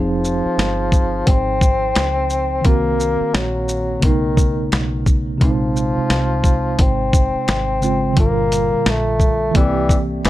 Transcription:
Already playing: fingered electric bass F1, bassoon F3, tine electric piano F3 C4 D#4 G#4
0.25 shaker
0.46 muted fingered electric bass stroke
0.58 fingered electric bass G1, snare, closed hi-hat
0.92 kick, shaker
1.27 fingered electric bass G#1, bassoon C4, kick, closed hi-hat
1.61 kick, shaker
1.96 fingered electric bass C#2, snare, closed hi-hat
2.30 shaker
2.61 fingered electric bass C2, tine electric piano D#3 A#3, bassoon A#3, kick, closed hi-hat
2.66 tine electric piano C4 F#4
3.00 shaker
3.21 muted fingered electric bass stroke
3.34 fingered electric bass A#1, bassoon F#3, snare, closed hi-hat
3.69 shaker
3.99 fingered electric bass B1, tine electric piano C#3 A3, kick, closed hi-hat
4.04 bassoon D#3, tine electric piano B3 D#4
4.37 kick, shaker
4.72 fingered electric bass B1, snare, closed hi-hat
5.06 kick, shaker
5.38 fingered electric bass A#1, tine electric piano C3 G#3, kick, closed hi-hat
5.43 bassoon F3, tine electric piano C4 D#4
5.76 shaker
5.98 muted fingered electric bass stroke
6.10 fingered electric bass C2, snare, closed hi-hat
6.44 kick, shaker
6.79 fingered electric bass G#1, bassoon C4, kick, closed hi-hat
7.13 kick, shaker
7.35 muted fingered electric bass stroke
7.48 fingered electric bass G#1, snare, closed hi-hat
7.81 tine electric piano C#3 G#3 C4 F4, shaker
8.13 fingered electric bass G1, tine electric piano D3 G3, kick, closed hi-hat
8.18 tine electric piano A#2 F4, bassoon A#3
8.52 closed hi-hat, shaker
8.74 muted fingered electric bass stroke
8.86 fingered electric bass A#1, bassoon A3, snare, closed hi-hat
9.20 kick, shaker
9.51 fingered electric bass C2, tine electric piano E3 A#3, kick, closed hi-hat
9.56 tenor saxophone E3, bassoon G3, tine electric piano C4 G4
9.89 kick, shaker
10.25 fingered electric bass F#1, tenor saxophone C3, bassoon E3, snare, closed hi-hat

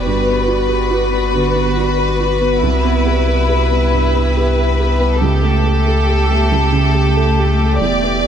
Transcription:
Already playing: ambient pad B3 D5
0.05 sub bass G1, felt piano G2, viola F#4, ambient pad F#4, violin section B4
0.27 felt piano B3
0.48 felt piano F#4
0.69 felt piano B4
0.91 felt piano F#4
1.12 felt piano B3
1.34 felt piano D3
1.55 felt piano B3
1.77 felt piano F#4
1.98 felt piano B4
2.21 felt piano F#4
2.41 felt piano B3
2.61 sub bass C2, felt piano C2, ambient pad B3 G4 E5, viola E4
2.84 felt piano B3
3.06 felt piano G4
3.28 felt piano B4
3.49 felt piano G4
3.71 felt piano B3
3.92 felt piano G2
4.15 felt piano B3
4.37 felt piano G4
4.57 felt piano B4
4.80 felt piano G4
5.00 felt piano B3
5.20 sub bass C#2, felt piano C#2, ambient pad A3, viola G4, violin section A4
5.42 felt piano A3
5.66 felt piano G4
5.86 felt piano A4
6.08 felt piano G4
6.30 felt piano A3
6.52 felt piano C#2
6.72 felt piano C#3
6.94 felt piano G4
7.16 felt piano A4
7.39 felt piano G4
7.59 felt piano A3
7.79 sub bass E1, felt piano E2, violin section D5
8.03 felt piano B3

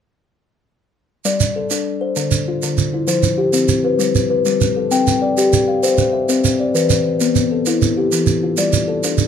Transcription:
1.25 kalimba G3 D5, shekere
1.40 shekere
1.56 kalimba A4
1.71 kalimba D4, shekere
2.01 kalimba C5
2.16 kalimba D3, shekere
2.31 shekere
2.48 kalimba F4
2.63 kalimba D3, shekere
2.78 shekere
2.94 kalimba E4
3.07 kalimba F3 C5, shekere
3.23 shekere
3.38 kalimba G4
3.53 kalimba C4, shekere
3.68 shekere
3.84 kalimba B4
3.99 kalimba G3, shekere
4.15 shekere
4.30 kalimba B4
4.46 kalimba G3, shekere
4.61 shekere
4.76 kalimba A4
4.91 kalimba C4 G5, shekere
5.07 shekere
5.22 kalimba D5
5.38 kalimba G4, shekere
5.53 shekere
5.68 kalimba F5
5.83 kalimba C5, shekere
5.98 shekere
6.13 kalimba E5
6.29 kalimba C4, shekere
6.44 shekere
6.59 kalimba D5
6.75 kalimba E3 B4, shekere
6.90 shekere
7.21 kalimba B3, shekere
7.35 shekere
7.51 kalimba A4
7.66 kalimba E4, shekere
7.82 shekere
7.97 kalimba G4
8.12 kalimba E3, shekere
8.27 shekere
8.43 kalimba F4
8.57 kalimba G3 D5, shekere
8.73 shekere
8.88 kalimba A4
9.04 kalimba D4, shekere
9.18 shekere

